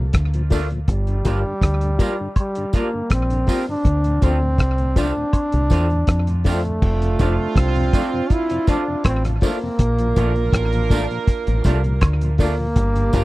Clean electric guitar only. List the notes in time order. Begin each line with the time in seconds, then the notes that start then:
0.51 F3 A3 D4 F4
1.25 F3 A#3 D4 F4
1.99 F3 A#3 D4 F4
2.74 F3 A#3 D4 F4
3.48 F3 A#3 D4 F4
4.22 F3 A3 C4 F4
4.97 F3 A3 C4 F4
5.71 F3 A3 C4 F4
6.45 F3 A3 C4 F4
7.19 F3 A3 D4 F4
7.93 F3 A3 D4 F4
8.67 F3 A3 D4 F4
9.42 F3 A3 D4 F4
10.17 F3 A3 D4 F4
10.91 F3 A3 D4 F4
11.65 F3 A3 D4 F4
12.39 F3 A3 D4 F4
13.13 F3 A#3 D4 F4